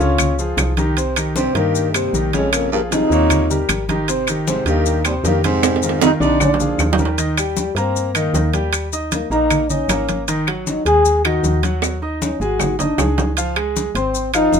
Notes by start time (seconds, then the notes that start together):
Already playing: D3 F4
0.00 C#2 C#3 C#4 C#5, maracas
0.18 high conga, low conga, high timbale, claves, maracas
0.39 F3 F4 G#4, high conga, maracas
0.57 C2, high conga, high timbale, low timbale, claves, maracas
0.77 D#3 D#4 G4, high conga, high timbale, maracas
0.97 C3 C4 C5, high conga, high timbale, maracas
1.16 D#3 D#4 G4, high conga, high timbale, claves, maracas
1.36 G2 C3 C4 C5, high conga, maracas
1.55 G2 D#3 A#3 D#4 G4, high conga, high timbale, maracas
1.75 high conga, maracas
1.94 D#2 C3 G3 C4 C5, high conga, high timbale, claves, maracas
2.13 A#1 D#3 D#4 G4, high conga, maracas
2.33 F2 C#3 G#3 C#4 C#5, high conga, high timbale, maracas
2.52 F2 A#3, high conga, high timbale, claves, maracas
2.72 G2 F3 A#3 F4 G#4, high conga
2.91 C3 F3 D#4 F4 G#4, high conga, high timbale, maracas
3.10 D#2 A#2 A#3 C#5, high conga, maracas
3.30 high conga, low conga, high timbale, claves, maracas
3.50 G3 G4 A#4, high conga, low conga, maracas
3.69 G#1, high conga, high timbale, claves, maracas
3.89 D#3 D#4 G4, high conga, high timbale, maracas
4.08 C3 C4 C5, high conga, high timbale, maracas
4.27 D#3 D#4 G4, high conga, high timbale, claves, maracas
4.46 G#2 C3 C4 C5, high conga, maracas
4.65 D#2 G2 D#3 A#3 D#4 G4, high conga, high timbale, maracas
4.86 high conga, maracas
5.04 D#2 C3 G3 C4 C5, high conga, high timbale, claves, maracas
5.24 F2 G2 D#3 A#3 D#4 G4, high conga, low timbale, maracas
5.44 G#2 C3 C4 C5, high conga, high timbale, maracas
5.63 high conga, high timbale, claves, maracas
5.76 high timbale
5.83 D#3 D#4 F4, high conga, maracas
5.89 high timbale
6.02 C3 D#3 D#4 F4, high conga, high timbale, maracas
6.20 A#1 C3 D3 D4 D#4 D5, high conga, maracas
6.40 A#2 D4, high conga, low conga, low timbale, claves, maracas
6.54 low timbale
6.60 F3 F4 G#4, high conga, low conga, maracas
6.78 D#2, high conga, low timbale, claves, maracas
6.93 low timbale
6.98 G3 G4 A#4, high conga, maracas
7.05 low timbale
7.18 D#3 D#4 D#5, high conga, high timbale, maracas
7.37 G3 G4 G5, high conga, high timbale, claves, maracas
7.57 G3, high conga, maracas
7.75 G2 A#3 C4 A#4 A#5, high conga, high timbale, maracas
7.95 high conga, maracas
8.15 D#3 A#3 D#4 D#5, high conga, high timbale, claves, maracas
8.34 D#2, high conga, low timbale, maracas
8.53 G3 G4 G5, high conga, high timbale, maracas
8.73 high conga, high timbale, claves, maracas
8.92 D#4 D#5 D#6, high conga, maracas
9.12 A#3, high conga, high timbale, maracas
9.30 A#1 A#3 D#4 A#4 A#5, high conga, maracas
9.50 high conga, low conga, high timbale, claves, maracas
9.70 C#4 D#4 D#5 D#6, high conga, low conga, maracas
9.88 G#1 A#3 A#4 A#5, high conga, high timbale, low timbale, claves, maracas
10.09 high conga, high timbale, maracas
10.28 D#3 D#4 D#5, high conga, high timbale, maracas
10.47 F#3 F#4 F#5, high conga, high timbale, claves
10.67 D#4, high conga, maracas
10.85 D#2 G#3 G#4 G#5, high conga, high timbale, maracas
11.05 high conga, maracas
11.25 D#3 D#4 F#4 D#5, high conga, high timbale, claves
11.43 D#2, high conga, maracas
11.63 F#3 F#4 F#5, high conga, high timbale, maracas
11.82 high conga, high timbale, claves, maracas
12.02 D#4 D#5 D#6, high conga
12.22 C#4, high conga, maracas
12.40 G#1 G#3 F#4 G#4 G#5, high conga, maracas
12.60 high conga, low conga, low timbale, claves, maracas
12.79 D4 D#4 D#5 D#6, high conga, low conga, low timbale, maracas
12.98 C#2 G#3 G#4 G#5, high conga, low timbale, claves, maracas
13.18 high conga, low timbale, maracas
13.37 F3 F4 F5, high conga, high timbale, maracas
13.56 G#3 G#4 G#5, high conga, high timbale, claves
13.76 high conga, maracas
13.95 G#1 C4 C5 C6, high conga, high timbale, maracas
14.15 high conga, maracas
14.34 F3 D#4 F4 F5, high conga, high timbale, claves, maracas
14.53 F1, high conga, maracas